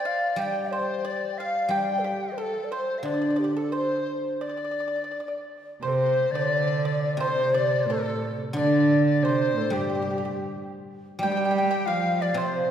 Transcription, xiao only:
0.06 F5
0.39 G5
0.71 C5
1.05 D5
1.31 G5
1.38 F5
1.71 G5
1.98 A4
2.04 G4
2.32 C5
2.37 A4
2.63 D5
2.71 C5
3.04 D5
3.38 G4
3.56 A4
3.73 C5
4.40 D5
5.82 C5
6.35 D5
7.23 C5
7.57 D5
7.90 A4
8.56 D5
9.14 D5
9.23 C5
9.57 A4
9.73 G4
11.20 G5
11.87 F5
12.21 D5
12.38 C5

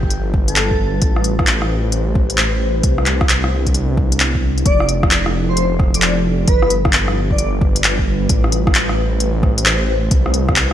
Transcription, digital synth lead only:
0.48 A4
4.65 D5
5.49 C5
5.57 C5
5.95 D5
6.03 D5
6.48 B4
7.31 D5
7.39 D5

